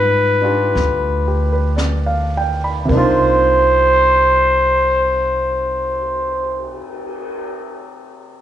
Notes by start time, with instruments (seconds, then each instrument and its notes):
Already playing: upright bass G#2, grand piano G3 B3 D4 F4, trumpet B4
0.42 grand piano D4 F4 G4
0.75 upright bass D2, brush sweep, snare
1.28 grand piano G4
1.52 grand piano B4
1.76 grand piano D5, snare, hi-hat pedal
2.06 grand piano F5
2.37 grand piano G5
2.64 grand piano B5
2.85 grand piano C3 A#3
2.89 upright bass C2, grand piano D4, trumpet C5, kick, ride
2.94 grand piano D#4 F4
3.69 cymbal swell